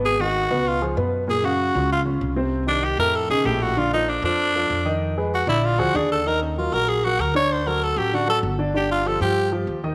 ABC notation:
X:1
M:4/4
L:1/8
Q:1/4=193
K:Eblyd
V:1 name="Tenor saxophone"
_A _G3 F z3 | _A _G3 F z3 | z D G B A _A G _G | F E D D4- D |
z2 _G =E F G _A =A | B _D F B _A _G B _d | c B A G ^F A z2 | G F A G2 z3 |]
V:2 name="Grand piano"
[_C,_C_c] [E,E_G]2 [C,Cc]2 [F,F_A] [C,Cc]2 | [B,,B,B] [_D,_Df]2 [D,DF]2 [D,DF]2 [C,Cc]- | [C,Cc] [E,EG]2 [A,,A,A]2 [^C,^CE] [A,,A,A]2 | [D,Dd] [F,FA]2 [F,FA]2 [F,FA]2 [E,Ee]- |
[E,Ee] [_A,_A_c]2 [D,Dd]2 [F,FA] [D,Dd]2 | [E,Ee]2 [_G,_GB] [G,GB]2 [G,GB]2 [D,Dd]- | [D,Dd] [^F,^FA]2 [F,FA] [D,Dd] [F,FA]2 [D,Dd] | [D,Dd]2 [F,FG] [F,FG]2 [F,FG]2 [E,Ee] |]
V:3 name="Upright bass" clef=bass
_A,,,3 _D,,3 _G,,2- | _G,,3 _D,,3 C,,2- | C,,3 F,,2 _C,, B,,,2- | B,,,3 F,,3 F,,2- |
F,,3 B,,,2 D,, E,,2- | E,,3 B,,,3 D,,2- | D,,3 A,,,3 G,,,2- | G,,,3 G,,3 E,,2 |]